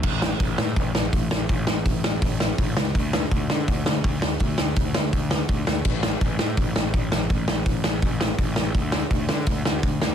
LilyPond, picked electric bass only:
\new Staff \with { instrumentName = "Picked electric bass" } { \clef bass \time 4/4 \key d \lydian \tempo 4 = 166 a,,4 a,,8 a,8 a,,8 a,,8 a,,8 a,,8 | a,,8 a,,8 a,,8 a,,8 a,,4 a,,8 cis,8 | d,4 d,8 d8 d,8 d,8 d,8 d,8 | d,8 d,8 d,8 d,8 d,4 d,8 d,8 |
a,,4 a,,8 a,8 a,,8 a,,8 a,,8 a,,8 | a,,8 a,,8 a,,8 a,,8 a,,4 a,,8 a,,8 | d,4 d,8 d8 d,8 d,8 d,8 d,8 | }